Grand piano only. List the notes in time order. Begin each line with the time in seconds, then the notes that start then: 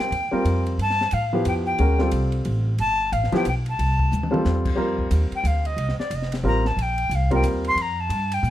Already playing: C4 F4 A#4
0.31 G3 C4 F4 A#4
1.33 F3 B3 E4 G4
1.79 G#3 C#4 F#4 A#4
1.99 G3 C4 F4 A4
3.32 F3 B3 E4 G4
4.31 G3 C4 F4 A4
4.76 G3 C4 F4 A#4
6.44 G3 C4 F4 A#4
7.31 G3 C4 F4 A#4